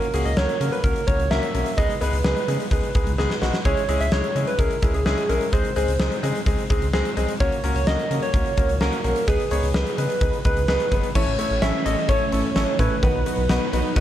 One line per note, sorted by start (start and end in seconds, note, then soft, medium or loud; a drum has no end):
0.00 0.27 A#4 medium
0.00 closed hi-hat soft
0.14 0.23 C#2 loud
0.14 0.28 A#3 medium
0.14 0.28 C#4 medium
0.14 0.28 F#4 medium
0.14 0.29 G#4 loud
0.14 closed hi-hat medium
0.25 0.35 C#2 loud
0.25 0.39 D#5 medium
0.25 closed hi-hat soft
0.37 0.47 C#2 loud
0.37 0.52 A#3 medium
0.37 0.52 C#4 medium
0.37 0.52 F#4 medium
0.37 0.52 A#4 medium
0.37 0.72 C#5 loud
0.37 snare loud
0.49 closed hi-hat soft
0.61 0.70 C#3 medium
0.61 0.75 A#3 medium
0.61 0.75 C#4 medium
0.61 0.75 F#4 medium
0.61 0.75 A#4 medium
0.61 closed hi-hat medium
0.72 0.85 B4 medium
0.72 closed hi-hat soft
0.84 0.94 C#2 loud
0.84 0.99 A#3 medium
0.84 0.99 C#4 medium
0.84 0.99 F#4 medium
0.84 1.09 A#4 medium
0.84 0.99 A#4 medium
0.84 kick medium
0.84 closed hi-hat medium
0.96 closed hi-hat soft
1.07 1.17 C#2 medium
1.07 1.22 A#3 medium
1.07 1.22 C#4 medium
1.07 1.22 F#4 medium
1.07 1.22 A#4 medium
1.07 1.32 C#5 loud
1.07 kick medium
1.07 closed hi-hat medium
1.19 1.29 C#2 medium
1.19 closed hi-hat medium
1.31 1.41 C#2 loud
1.31 1.46 A#3 loud
1.31 1.46 C#4 medium
1.31 1.46 F#4 medium
1.31 1.46 A#4 loud
1.31 1.77 E5 loud
1.31 snare loud
1.43 closed hi-hat medium
1.54 1.64 B1 medium
1.54 1.69 A#3 medium
1.54 1.69 C#4 medium
1.54 1.69 F#4 medium
1.54 1.69 A#4 medium
1.54 closed hi-hat medium
1.66 closed hi-hat medium
1.78 1.88 C#2 loud
1.78 1.93 G#3 medium
1.78 1.93 B3 medium
1.78 1.93 D#4 medium
1.78 1.93 G#4 loud
1.78 1.99 D#5 loud
1.78 kick medium
1.78 closed hi-hat medium
1.90 closed hi-hat soft
2.01 2.11 C#2 loud
2.01 2.16 G#3 medium
2.01 2.16 B3 medium
2.01 2.16 D#4 medium
2.01 2.16 G#4 loud
2.01 2.23 B4 medium
2.01 closed hi-hat medium
2.13 2.23 C#2 loud
2.13 closed hi-hat soft
2.24 2.34 C#2 loud
2.24 2.39 G#3 medium
2.24 2.39 B3 medium
2.24 2.39 D#4 medium
2.24 2.39 G#4 medium
2.24 2.68 B4 medium
2.24 snare loud
2.37 closed hi-hat soft
2.48 2.58 C#3 loud
2.48 2.63 G#3 medium
2.48 2.63 B3 medium
2.48 2.63 D#4 medium
2.48 2.63 G#4 medium
2.48 closed hi-hat medium
2.60 closed hi-hat soft
2.71 2.81 C#2 loud
2.71 2.86 G#3 medium
2.71 2.86 B3 medium
2.71 2.86 D#4 medium
2.71 2.86 G#4 medium
2.71 3.38 B4 medium
2.71 kick medium
2.71 closed hi-hat medium
2.83 closed hi-hat soft
2.95 3.05 C#2 loud
2.95 3.10 G#3 medium
2.95 3.10 B3 medium
2.95 3.10 D#4 medium
2.95 3.10 G#4 medium
2.95 kick medium
2.95 closed hi-hat medium
3.07 3.16 C#2 loud
3.07 closed hi-hat medium
3.18 3.28 C#2 loud
3.18 3.33 G#3 loud
3.18 3.33 B3 medium
3.18 3.33 D#4 medium
3.18 3.33 G#4 loud
3.18 snare medium
3.30 snare medium
3.42 3.51 B1 medium
3.42 3.57 G#3 medium
3.42 3.57 B3 medium
3.42 3.57 D#4 medium
3.42 3.57 F#4 loud
3.42 snare medium
3.54 snare medium
3.65 3.75 C#2 loud
3.65 3.80 G#3 medium
3.65 3.80 C#4 medium
3.65 3.80 E4 medium
3.65 3.80 G#4 loud
3.65 4.02 C#5 loud
3.65 kick medium
3.65 closed hi-hat medium
3.77 closed hi-hat soft
3.89 3.98 C#2 loud
3.89 4.03 G#3 medium
3.89 4.03 C#4 medium
3.89 4.03 E4 medium
3.89 4.03 G#4 loud
3.89 closed hi-hat medium
4.00 4.10 C#2 medium
4.00 4.14 E5 loud
4.00 closed hi-hat soft
4.12 4.22 C#2 loud
4.12 4.27 G#3 medium
4.12 4.27 C#4 medium
4.12 4.27 E4 medium
4.12 4.27 G#4 medium
4.12 4.47 C#5 loud
4.12 snare loud
4.24 closed hi-hat soft
4.35 4.45 C#3 loud
4.35 4.50 G#3 medium
4.35 4.50 C#4 medium
4.35 4.50 E4 medium
4.35 4.50 G#4 medium
4.35 closed hi-hat medium
4.47 4.61 B4 medium
4.47 closed hi-hat soft
4.59 4.69 C#2 loud
4.59 4.74 G#3 medium
4.59 4.74 C#4 medium
4.59 4.74 E4 medium
4.59 4.74 G#4 medium
4.59 4.96 A#4 medium
4.59 kick medium
4.59 closed hi-hat medium
4.71 closed hi-hat soft
4.82 4.92 C#2 medium
4.82 4.97 G#3 medium
4.82 4.97 C#4 medium
4.82 4.97 E4 medium
4.82 4.97 G#4 medium
4.82 kick loud
4.82 closed hi-hat medium
4.94 5.04 C#2 loud
4.94 5.06 G#4 medium
4.94 closed hi-hat medium
5.06 5.16 C#2 loud
5.06 5.21 G#3 loud
5.06 5.21 C#4 medium
5.06 5.21 E4 medium
5.06 5.21 G#4 loud
5.06 5.31 G#4 medium
5.06 snare loud
5.18 closed hi-hat medium
5.29 5.39 B1 loud
5.29 5.44 G#3 medium
5.29 5.44 C#4 medium
5.29 5.44 E4 medium
5.29 5.44 G#4 medium
5.29 5.52 A#4 medium
5.29 closed hi-hat medium
5.41 closed hi-hat medium
5.53 5.63 C#2 loud
5.53 5.68 G#3 medium
5.53 5.68 C4 medium
5.53 5.68 D#4 medium
5.53 5.68 G#4 loud
5.53 6.19 C5 medium
5.53 kick medium
5.53 closed hi-hat medium
5.65 closed hi-hat soft
5.76 5.86 C#2 medium
5.76 5.91 G#3 medium
5.76 5.91 C4 medium
5.76 5.91 D#4 medium
5.76 5.91 G#4 loud
5.76 closed hi-hat medium
5.88 5.98 C#2 loud
5.88 closed hi-hat soft
6.00 6.09 C#2 medium
6.00 6.14 G#3 medium
6.00 6.14 C4 medium
6.00 6.14 D#4 medium
6.00 6.14 G#4 medium
6.00 snare loud
6.12 closed hi-hat soft
6.23 6.33 C#3 loud
6.23 6.38 G#3 medium
6.23 6.38 C4 medium
6.23 6.38 D#4 medium
6.23 6.38 G#4 medium
6.23 closed hi-hat medium
6.35 closed hi-hat soft
6.46 6.56 C#2 medium
6.46 6.61 G#3 medium
6.46 6.61 C4 medium
6.46 6.61 D#4 medium
6.46 6.61 G#4 medium
6.46 kick medium
6.46 closed hi-hat medium
6.58 closed hi-hat soft
6.70 6.80 C#2 medium
6.70 6.85 G#3 medium
6.70 6.85 C4 medium
6.70 6.85 D#4 medium
6.70 6.85 G#4 medium
6.70 kick medium
6.70 closed hi-hat medium
6.82 6.91 C#2 loud
6.82 closed hi-hat medium
6.93 7.03 C#2 loud
6.93 7.08 G#3 loud
6.93 7.08 C4 loud
6.93 7.08 D#4 loud
6.93 7.08 G#4 loud
6.93 snare loud
7.05 closed hi-hat medium
7.17 7.27 C2 medium
7.17 7.32 G#3 medium
7.17 7.32 C4 medium
7.17 7.32 D#4 medium
7.17 7.32 G#4 loud
7.17 closed hi-hat medium
7.28 closed hi-hat medium
7.40 7.50 C#2 loud
7.40 7.55 A#3 medium
7.40 7.55 C#4 medium
7.40 7.55 F#4 medium
7.40 7.55 A#4 loud
7.40 7.73 C#5 loud
7.40 kick medium
7.40 closed hi-hat medium
7.52 closed hi-hat soft
7.64 7.73 C#2 loud
7.64 7.78 A#3 medium
7.64 7.78 C#4 medium
7.64 7.78 F#4 medium
7.64 7.78 A#4 loud
7.64 closed hi-hat medium
7.75 7.85 C#2 loud
7.75 7.89 C#5 loud
7.75 closed hi-hat soft
7.87 7.97 C#2 loud
7.87 8.02 A#3 medium
7.87 8.02 C#4 medium
7.87 8.02 F#4 medium
7.87 8.02 A#4 medium
7.87 8.24 D#5 loud
7.87 snare loud
7.99 closed hi-hat soft
8.11 8.20 C#3 medium
8.11 8.25 A#3 medium
8.11 8.25 C#4 medium
8.11 8.25 F#4 medium
8.11 8.25 A#4 medium
8.11 closed hi-hat medium
8.23 8.83 C#5 loud
8.23 closed hi-hat soft
8.34 8.44 C#2 loud
8.34 8.49 A#3 medium
8.34 8.49 C#4 medium
8.34 8.49 F#4 medium
8.34 8.49 A#4 medium
8.34 kick medium
8.34 closed hi-hat medium
8.46 closed hi-hat soft
8.57 8.67 C#2 medium
8.57 8.72 A#3 medium
8.57 8.72 C#4 medium
8.57 8.72 F#4 medium
8.57 8.72 A#4 medium
8.57 kick loud
8.57 closed hi-hat medium
8.69 8.79 C#2 medium
8.69 closed hi-hat medium
8.81 8.91 C#2 loud
8.81 8.96 A#3 medium
8.81 8.96 C#4 medium
8.81 8.96 F#4 medium
8.81 8.96 A#4 loud
8.81 9.29 A#4 medium
8.81 snare loud
8.93 closed hi-hat medium
9.04 9.14 B1 medium
9.04 9.19 A#3 medium
9.04 9.19 C#4 medium
9.04 9.19 F#4 medium
9.04 9.19 A#4 medium
9.04 closed hi-hat medium
9.16 closed hi-hat medium
9.28 9.38 C#2 loud
9.28 9.43 B3 medium
9.28 9.43 D#4 medium
9.28 9.43 G#4 medium
9.28 10.00 G#4 medium
9.28 9.43 B4 loud
9.28 kick medium
9.28 closed hi-hat medium
9.40 closed hi-hat soft
9.51 9.61 C#2 medium
9.51 9.66 B3 medium
9.51 9.66 D#4 medium
9.51 9.66 G#4 medium
9.51 9.66 C#5 loud
9.51 closed hi-hat medium
9.63 9.73 C#2 medium
9.63 closed hi-hat soft
9.74 9.84 C#2 loud
9.74 9.89 B3 medium
9.74 9.89 D#4 medium
9.74 9.89 G#4 medium
9.74 9.89 B4 medium
9.74 snare loud
9.87 closed hi-hat soft
9.98 10.08 C#3 loud
9.98 10.13 B3 medium
9.98 10.13 D#4 medium
9.98 10.13 G#4 medium
9.98 10.13 B4 medium
9.98 10.44 B4 medium
9.98 closed hi-hat medium
10.10 closed hi-hat soft
10.21 10.31 C#2 loud
10.21 10.36 B3 medium
10.21 10.36 D#4 medium
10.21 10.36 G#4 medium
10.21 10.36 B4 medium
10.21 kick medium
10.21 closed hi-hat medium
10.33 closed hi-hat soft
10.45 10.55 C#2 loud
10.45 10.60 B3 medium
10.45 10.60 D#4 medium
10.45 10.60 G#4 medium
10.45 10.60 B4 medium
10.45 11.11 B4 medium
10.45 kick medium
10.45 closed hi-hat medium
10.57 10.66 C#2 loud
10.57 closed hi-hat medium
10.68 10.78 C#2 loud
10.68 10.83 B3 loud
10.68 10.83 D#4 loud
10.68 10.83 G#4 loud
10.68 10.83 B4 loud
10.68 snare loud
10.80 closed hi-hat medium
10.92 11.02 F#1 medium
10.92 11.07 B3 medium
10.92 11.07 D#4 medium
10.92 11.07 G#4 medium
10.92 11.07 B4 medium
10.92 kick medium
10.92 closed hi-hat medium
11.03 closed hi-hat medium
11.15 11.25 A1 loud
11.15 13.01 E3 medium
11.15 11.33 E3 medium
11.15 13.01 A3 medium
11.15 13.01 C#4 medium
11.15 11.30 C#4 medium
11.15 11.30 E4 medium
11.15 11.30 A4 medium
11.15 11.30 C#5 loud
11.15 11.64 C#5 loud
11.15 kick medium
11.15 crash medium
11.27 11.37 A1 loud
11.39 11.56 A3 medium
11.39 11.53 C#4 medium
11.39 11.54 E4 medium
11.39 11.53 A4 medium
11.39 11.54 C#5 medium
11.39 closed hi-hat medium
11.50 11.60 A1 loud
11.62 11.72 A1 loud
11.62 11.77 C#4 medium
11.62 11.80 C#4 medium
11.62 11.77 E4 medium
11.62 11.77 A4 medium
11.62 11.77 C#5 medium
11.62 11.87 E5 loud
11.62 snare loud
11.62 closed hi-hat medium
11.85 11.95 A1 medium
11.85 12.00 C#4 medium
11.85 12.00 E4 medium
11.85 12.00 A4 medium
11.85 12.00 C#5 medium
11.85 12.10 D#5 medium
11.85 closed hi-hat medium
12.09 12.19 A1 loud
12.09 12.24 C#4 medium
12.09 12.24 E4 medium
12.09 12.24 A4 medium
12.09 12.81 C#5 loud
12.09 12.24 C#5 loud
12.09 kick medium
12.09 closed hi-hat medium
12.32 12.42 A1 medium
12.32 12.47 C#4 medium
12.32 12.47 E4 medium
12.32 12.47 A4 medium
12.32 12.47 C#5 medium
12.32 closed hi-hat medium
12.56 12.66 A1 loud
12.56 12.73 C#4 medium
12.56 12.71 C#4 medium
12.56 12.71 E4 medium
12.56 12.71 A4 medium
12.56 12.71 C#5 medium
12.56 snare loud
12.56 closed hi-hat medium
12.79 12.89 A2 loud
12.79 12.94 C#4 medium
12.79 12.94 E4 medium
12.79 12.97 E4 medium
12.79 12.94 A4 medium
12.79 14.00 B4 loud
12.79 12.94 C#5 medium
12.79 kick medium
12.79 closed hi-hat medium
13.03 13.13 B1 loud
13.03 13.20 D#3 medium
13.03 14.00 F#3 medium
13.03 14.00 B3 medium
13.03 13.18 B3 loud
13.03 14.00 D#4 medium
13.03 13.17 D#4 medium
13.03 13.18 F#4 medium
13.03 13.18 B4 loud
13.03 kick medium
13.03 closed hi-hat medium
13.14 13.24 B1 loud
13.26 13.44 F#3 medium
13.26 13.41 B3 medium
13.26 13.41 D#4 medium
13.26 13.41 F#4 medium
13.26 13.41 B4 medium
13.26 closed hi-hat medium
13.38 13.48 B1 medium
13.49 13.59 B1 loud
13.49 13.64 B3 medium
13.49 13.67 B3 medium
13.49 13.64 D#4 medium
13.49 13.64 F#4 medium
13.49 13.64 B4 loud
13.49 snare loud
13.49 closed hi-hat medium
13.73 13.83 B1 loud
13.73 13.88 B3 medium
13.73 13.88 D#4 medium
13.73 13.88 F#4 medium
13.73 13.88 B4 medium
13.73 closed hi-hat medium
13.96 14.00 B1 loud
13.96 14.00 B3 loud
13.96 14.00 D#4 loud
13.96 14.00 F#4 loud
13.96 14.00 B4 loud
13.96 kick medium
13.96 closed hi-hat medium